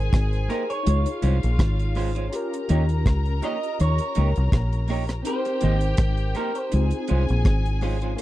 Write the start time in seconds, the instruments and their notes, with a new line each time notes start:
Already playing: fingered electric bass G#1, tine electric piano D#4 G#4 A#4 C5, string section G#4 G#5, clean electric guitar C5
0.13 fingered electric bass G#1, kick, cross-stick, closed hi-hat
0.33 closed hi-hat
0.49 clean electric guitar A#3 D#4 G4 A#4 C5, closed hi-hat
0.70 clean electric guitar C#5, closed hi-hat
0.83 fingered electric bass C#2, tine electric piano D#4 F4 G#4, string section F4 F5, closed hi-hat
0.89 tine electric piano C#5
1.06 closed hi-hat
1.22 fingered electric bass C2, clean electric guitar G#3 C#4 F4 C5, closed hi-hat
1.43 fingered electric bass A#1, closed hi-hat
1.59 fingered electric bass G#1, kick, cross-stick, closed hi-hat
1.79 closed hi-hat
1.95 clean electric guitar G#3 C#4 F4 C5, open hi-hat
2.15 clean electric guitar G#3 C#4 F4 C5, closed hi-hat
2.29 tine electric piano C#4 F4 G4, string section A#4 A#5, closed hi-hat
2.35 tine electric piano A#4
2.53 closed hi-hat
2.69 fingered electric bass D#2, clean electric guitar A#3 D#4 G4 C#5, closed hi-hat
2.89 closed hi-hat
3.06 fingered electric bass C#2, kick, cross-stick, closed hi-hat
3.25 closed hi-hat
3.42 clean electric guitar A#3 D#4 G4 C#5 D#5, closed hi-hat
3.63 closed hi-hat
3.80 fingered electric bass D#2, clean electric guitar C#5, closed hi-hat
3.98 closed hi-hat
4.15 fingered electric bass C#2, clean electric guitar A#3 D#4 G4 C#5, closed hi-hat
4.36 fingered electric bass C2, closed hi-hat
4.52 fingered electric bass A#1, kick, cross-stick, closed hi-hat
4.73 closed hi-hat
4.88 clean electric guitar A#3 D#4 G4 C#5, open hi-hat
5.09 cross-stick, closed hi-hat
5.22 tine electric piano C4 D#4, string section G4 G5, closed hi-hat
5.26 tine electric piano G4 G#4, clean electric guitar C5
5.35 tine electric piano A#4
5.45 closed hi-hat
5.61 fingered electric bass G#1, clean electric guitar A#3 D#4 G4 C5, closed hi-hat
5.81 closed hi-hat
5.97 fingered electric bass G#1, kick, cross-stick, closed hi-hat
6.17 closed hi-hat
6.35 clean electric guitar A#3 D#4 G4 A#4 C5, closed hi-hat
6.55 clean electric guitar C5, closed hi-hat
6.70 fingered electric bass C#2, tine electric piano C4 D#4 F4, string section G#4 G#5, closed hi-hat
6.76 tine electric piano G4
6.82 tine electric piano G#4
6.91 closed hi-hat
7.08 fingered electric bass C2, clean electric guitar G#3 C#4 F4 C5, closed hi-hat
7.29 fingered electric bass A#1, closed hi-hat
7.45 fingered electric bass G#1, kick, cross-stick, closed hi-hat
7.66 closed hi-hat
7.81 clean electric guitar G#3 C#4 F4 C5, open hi-hat
8.02 clean electric guitar G#3 C#4 F4 C5, closed hi-hat
8.16 tine electric piano A#3 C#4, string section C#5 C6, closed hi-hat